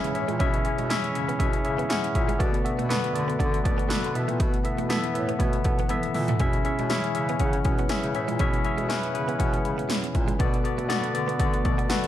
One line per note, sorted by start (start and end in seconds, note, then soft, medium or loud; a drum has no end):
0.00 0.40 B2 medium
0.00 0.12 C#3 medium
0.00 2.36 E3 medium
0.00 2.36 G#3 medium
0.00 0.14 C#4 loud
0.00 2.36 C#4 medium
0.00 0.15 E4 loud
0.00 0.15 G#4 loud
0.00 2.42 B4 loud
0.00 0.66 C#5 medium
0.00 0.15 E5 loud
0.00 1.90 F#5 loud
0.04 closed hi-hat medium
0.14 0.25 A2 medium
0.14 0.35 C#4 medium
0.14 0.35 E4 medium
0.14 0.35 G#4 medium
0.14 0.35 E5 medium
0.14 muted clean electric guitar stroke soft
0.14 closed hi-hat medium
0.28 0.37 A#2 medium
0.28 0.35 G#3 medium
0.28 closed hi-hat medium
0.39 1.11 B2 medium
0.39 0.59 B2 loud
0.39 0.48 C#4 medium
0.39 0.60 C#4 loud
0.39 0.60 E4 loud
0.39 0.60 G#4 loud
0.39 0.60 E5 loud
0.39 kick loud
0.39 closed hi-hat medium
0.54 closed hi-hat medium
0.65 0.85 C#4 medium
0.65 0.85 E4 medium
0.65 0.85 G#4 medium
0.65 0.86 C#5 medium
0.65 muted clean electric guitar stroke soft
0.65 closed hi-hat medium
0.78 0.97 B2 loud
0.78 0.85 G#3 medium
0.78 closed hi-hat soft
0.90 0.98 G#3 medium
0.90 1.10 C#4 loud
0.90 1.10 E4 medium
0.90 1.10 G#4 loud
0.90 1.11 E5 loud
0.90 snare loud
0.90 closed hi-hat medium
1.03 muted clean electric guitar stroke soft
1.03 closed hi-hat soft
1.14 1.33 C#3 medium
1.14 1.35 C#4 medium
1.14 1.35 E4 medium
1.14 1.35 G#4 medium
1.14 1.35 E5 medium
1.14 closed hi-hat medium
1.29 1.35 B3 medium
1.29 closed hi-hat medium
1.39 1.59 B2 loud
1.39 1.60 C#4 medium
1.39 1.48 C#4 medium
1.39 1.60 E4 medium
1.39 1.60 G#4 medium
1.39 1.60 E5 loud
1.39 kick medium
1.39 closed hi-hat medium
1.53 muted clean electric guitar stroke soft
1.53 closed hi-hat medium
1.65 1.84 C#3 medium
1.65 1.85 C#4 medium
1.65 1.85 E4 medium
1.65 1.85 G#4 medium
1.65 1.85 E5 medium
1.65 closed hi-hat medium
1.78 1.85 B3 medium
1.78 closed hi-hat soft
1.89 1.98 G#3 medium
1.89 2.10 C#4 loud
1.89 2.10 E4 medium
1.89 2.10 G#4 medium
1.89 2.10 F#5 loud
1.89 snare loud
1.89 closed hi-hat medium
2.04 closed hi-hat medium
2.15 2.34 A#2 medium
2.15 2.35 C#4 medium
2.15 2.35 E4 medium
2.15 2.35 G#4 medium
2.15 2.36 E5 medium
2.15 muted clean electric guitar stroke soft
2.15 kick medium
2.15 closed hi-hat medium
2.29 2.35 G#3 medium
2.29 closed hi-hat medium
2.39 3.11 B2 medium
2.39 2.59 B2 loud
2.39 4.13 D3 medium
2.39 4.14 A3 medium
2.39 2.59 B3 loud
2.39 2.48 B3 medium
2.39 6.36 B3 medium
2.39 2.60 F#4 loud
2.39 2.60 A4 loud
2.39 2.60 D5 loud
2.39 kick loud
2.39 closed hi-hat medium
2.54 closed hi-hat medium
2.64 2.85 B3 medium
2.64 2.85 F#4 medium
2.64 2.85 A4 medium
2.64 2.85 E5 medium
2.64 muted clean electric guitar stroke soft
2.64 closed hi-hat medium
2.78 2.97 B2 loud
2.78 2.85 A3 medium
2.78 closed hi-hat soft
2.89 2.97 A3 medium
2.89 3.10 B3 loud
2.89 3.10 F#4 loud
2.89 3.10 A4 medium
2.89 3.10 B4 loud
2.89 snare loud
2.89 closed hi-hat medium
3.03 muted clean electric guitar stroke soft
3.03 closed hi-hat soft
3.14 3.33 D3 loud
3.14 3.34 B3 medium
3.14 3.35 F#4 medium
3.14 3.35 A4 medium
3.14 3.35 D5 medium
3.14 closed hi-hat medium
3.28 3.35 B3 medium
3.28 closed hi-hat medium
3.39 3.59 D3 loud
3.39 3.59 B3 medium
3.39 3.47 D4 medium
3.39 3.60 F#4 medium
3.39 3.60 A4 medium
3.39 3.60 D5 medium
3.39 kick medium
3.39 closed hi-hat medium
3.52 muted clean electric guitar stroke soft
3.52 closed hi-hat medium
3.64 3.84 B2 medium
3.64 3.84 B3 medium
3.64 3.85 F#4 medium
3.64 3.85 A4 medium
3.64 3.85 D5 medium
3.64 kick loud
3.64 closed hi-hat medium
3.78 3.85 B3 medium
3.78 closed hi-hat soft
3.89 3.97 A3 medium
3.89 4.09 B3 loud
3.89 4.10 F#4 medium
3.89 4.10 A4 medium
3.89 4.10 B4 loud
3.89 snare loud
3.89 closed hi-hat medium
4.04 4.12 D3 medium
4.04 closed hi-hat medium
4.14 4.25 B2 medium
4.14 4.86 B2 medium
4.14 10.36 E3 medium
4.14 6.38 A3 medium
4.14 4.56 B3 medium
4.14 4.56 E4 medium
4.14 4.56 A4 medium
4.14 4.57 E5 medium
4.14 muted clean electric guitar stroke soft
4.14 closed hi-hat medium
4.28 4.37 A#2 medium
4.28 4.35 A3 medium
4.28 closed hi-hat medium
4.40 4.59 B2 loud
4.40 4.48 B3 medium
4.40 kick loud
4.40 closed hi-hat medium
4.54 closed hi-hat medium
4.64 4.85 B3 medium
4.64 4.85 E4 medium
4.64 4.85 A4 medium
4.64 4.85 E5 medium
4.64 muted clean electric guitar stroke soft
4.64 closed hi-hat medium
4.78 4.97 B2 medium
4.78 4.85 A3 medium
4.78 closed hi-hat soft
4.89 4.98 A3 medium
4.89 5.10 B3 loud
4.89 5.10 E4 loud
4.89 5.10 A4 loud
4.89 5.10 E5 loud
4.89 snare loud
4.89 closed hi-hat medium
5.04 muted clean electric guitar stroke soft
5.04 closed hi-hat soft
5.14 5.33 A2 medium
5.14 5.34 B3 medium
5.14 5.35 E4 medium
5.14 5.35 A4 medium
5.14 5.35 B4 medium
5.14 closed hi-hat medium
5.29 5.35 B3 medium
5.29 closed hi-hat medium
5.39 5.59 B2 loud
5.39 5.48 A3 medium
5.39 5.59 B3 medium
5.39 5.60 E4 medium
5.39 5.60 A4 medium
5.39 5.60 C#5 medium
5.39 kick medium
5.39 closed hi-hat medium
5.53 muted clean electric guitar stroke soft
5.53 closed hi-hat medium
5.64 5.84 B2 medium
5.64 5.85 B3 medium
5.64 5.85 E4 medium
5.64 5.85 A4 medium
5.64 5.85 F#5 medium
5.64 kick loud
5.64 closed hi-hat medium
5.79 5.86 B3 medium
5.79 closed hi-hat soft
5.89 6.10 B3 medium
5.89 5.98 B3 medium
5.89 6.10 E4 medium
5.89 6.10 A4 medium
5.89 6.11 E5 loud
5.89 closed hi-hat medium
5.89 high tom medium
6.03 closed hi-hat medium
6.14 6.34 A#2 medium
6.14 6.35 B3 medium
6.14 6.35 E4 medium
6.14 6.35 A4 medium
6.14 6.35 E5 medium
6.14 muted clean electric guitar stroke soft
6.14 mid tom medium
6.14 open hi-hat medium
6.28 6.36 A3 medium
6.28 closed hi-hat medium
6.28 floor tom medium
6.39 6.59 B2 loud
6.39 7.12 B2 medium
6.39 10.36 G#3 medium
6.39 6.60 C#4 loud
6.39 6.48 C#4 medium
6.39 8.38 C#4 medium
6.39 6.60 E4 loud
6.39 6.61 G#4 medium
6.39 6.61 E5 loud
6.39 kick loud
6.39 closed hi-hat medium
6.53 closed hi-hat medium
6.65 6.85 C#4 medium
6.65 6.85 E4 medium
6.65 6.85 G#4 medium
6.65 6.85 E5 medium
6.65 muted clean electric guitar stroke soft
6.65 closed hi-hat medium
6.79 6.97 B2 loud
6.79 6.86 G#3 medium
6.79 closed hi-hat soft
6.89 6.98 G#3 medium
6.89 7.10 C#4 loud
6.89 7.10 E4 medium
6.89 7.10 G#4 loud
6.89 7.10 E5 loud
6.89 snare loud
6.89 closed hi-hat medium
7.04 muted clean electric guitar stroke soft
7.04 closed hi-hat soft
7.15 7.34 C#3 medium
7.15 7.35 C#4 medium
7.15 7.35 E4 medium
7.15 7.36 G#4 medium
7.15 7.36 E5 medium
7.15 closed hi-hat medium
7.29 7.36 B3 medium
7.29 closed hi-hat medium
7.40 7.58 C#3 loud
7.40 7.60 C#4 medium
7.40 7.48 C#4 medium
7.40 7.60 E4 medium
7.40 7.60 G#4 medium
7.40 7.60 F#5 medium
7.40 kick medium
7.40 closed hi-hat medium
7.53 muted clean electric guitar stroke soft
7.53 closed hi-hat medium
7.65 7.84 B2 medium
7.65 7.85 C#4 medium
7.65 7.85 E4 medium
7.65 7.85 G#4 medium
7.65 7.86 B4 medium
7.65 kick loud
7.65 closed hi-hat medium
7.79 7.86 B3 medium
7.79 closed hi-hat soft
7.89 7.98 G#3 medium
7.89 8.10 C#4 loud
7.89 8.10 E4 medium
7.89 8.10 G#4 medium
7.89 8.11 E5 loud
7.89 snare loud
7.89 closed hi-hat medium
8.04 8.12 C#3 medium
8.04 closed hi-hat medium
8.15 8.25 A2 medium
8.15 8.35 C#4 medium
8.15 8.35 E4 medium
8.15 8.35 G#4 medium
8.15 8.35 E5 medium
8.15 muted clean electric guitar stroke soft
8.15 closed hi-hat medium
8.28 8.37 A#2 medium
8.28 8.35 G#3 medium
8.28 closed hi-hat medium
8.39 8.59 B2 medium
8.39 9.11 B2 medium
8.39 12.07 B3 medium
8.39 8.47 C#4 medium
8.39 8.60 C#4 loud
8.39 8.60 E4 loud
8.39 8.60 G#4 loud
8.39 8.61 E5 loud
8.39 kick loud
8.39 closed hi-hat medium
8.54 closed hi-hat medium
8.65 8.85 C#4 medium
8.65 8.85 E4 medium
8.65 8.85 G#4 medium
8.65 8.86 E5 medium
8.65 muted clean electric guitar stroke soft
8.65 closed hi-hat medium
8.78 8.97 B2 medium
8.78 8.84 G#3 medium
8.78 closed hi-hat soft
8.89 8.97 G#3 medium
8.89 9.10 C#4 loud
8.89 9.10 E4 loud
8.89 9.10 G#4 loud
8.89 9.10 B4 loud
8.89 snare loud
8.89 closed hi-hat medium
9.03 muted clean electric guitar stroke soft
9.03 closed hi-hat medium
9.14 9.33 C#3 medium
9.14 9.34 C#4 medium
9.14 9.35 E4 medium
9.14 9.35 G#4 medium
9.14 9.35 B4 medium
9.14 closed hi-hat medium
9.28 9.35 B3 medium
9.28 closed hi-hat medium
9.39 9.59 B2 loud
9.39 9.60 C#4 medium
9.39 9.47 C#4 medium
9.39 9.60 E4 medium
9.39 9.60 G#4 medium
9.39 9.60 F#5 medium
9.39 kick medium
9.39 closed hi-hat medium
9.53 muted clean electric guitar stroke soft
9.53 closed hi-hat medium
9.65 9.84 C#3 medium
9.65 9.89 F#5 medium
9.65 9.89 B5 medium
9.65 closed hi-hat medium
9.78 9.85 B3 medium
9.78 closed hi-hat soft
9.89 9.97 G#3 medium
9.89 10.14 C#5 medium
9.89 10.13 G#5 medium
9.89 snare loud
9.89 closed hi-hat medium
10.04 closed hi-hat medium
10.15 10.34 A#2 medium
10.15 10.63 B4 medium
10.15 10.62 E5 medium
10.15 muted clean electric guitar stroke soft
10.15 kick medium
10.15 closed hi-hat medium
10.28 10.35 G#3 medium
10.28 closed hi-hat medium
10.39 11.11 B2 medium
10.39 10.59 B2 loud
10.39 12.07 D3 medium
10.39 12.07 A3 medium
10.39 10.60 B3 loud
10.39 10.47 B3 medium
10.39 10.60 F#4 loud
10.39 10.60 A4 loud
10.39 10.60 D5 loud
10.39 kick loud
10.39 closed hi-hat loud
10.54 closed hi-hat soft
10.64 10.85 B3 medium
10.64 10.85 F#4 medium
10.64 10.85 A4 medium
10.64 10.85 D5 medium
10.64 muted clean electric guitar stroke soft
10.64 closed hi-hat medium
10.78 10.98 B2 medium
10.78 10.85 A3 medium
10.78 closed hi-hat soft
10.88 10.97 A3 medium
10.88 11.09 B3 loud
10.88 11.09 F#4 loud
10.88 11.10 A4 loud
10.88 11.10 D5 loud
10.88 snare loud
10.88 closed hi-hat medium
11.03 muted clean electric guitar stroke soft
11.03 closed hi-hat medium
11.14 11.34 D3 medium
11.14 11.34 B3 medium
11.14 11.35 F#4 medium
11.14 11.35 A4 medium
11.14 11.35 D5 medium
11.14 closed hi-hat medium
11.28 11.34 B3 medium
11.28 closed hi-hat medium
11.39 11.59 D3 loud
11.39 11.60 B3 medium
11.39 11.47 D4 medium
11.39 11.60 F#4 medium
11.39 11.60 A4 medium
11.39 11.61 D5 medium
11.39 kick medium
11.39 closed hi-hat medium
11.53 muted clean electric guitar stroke soft
11.53 closed hi-hat medium
11.64 11.84 B2 medium
11.64 11.85 B3 medium
11.64 11.85 F#4 medium
11.64 11.85 A4 medium
11.64 11.85 D5 medium
11.64 kick loud
11.64 closed hi-hat medium
11.78 11.85 B3 medium
11.78 closed hi-hat soft
11.89 11.98 A3 medium
11.89 12.07 B3 loud
11.89 12.07 F#4 medium
11.89 12.07 A4 medium
11.89 12.07 B4 loud
11.89 snare loud
11.89 closed hi-hat medium
12.03 12.07 D3 medium
12.03 closed hi-hat medium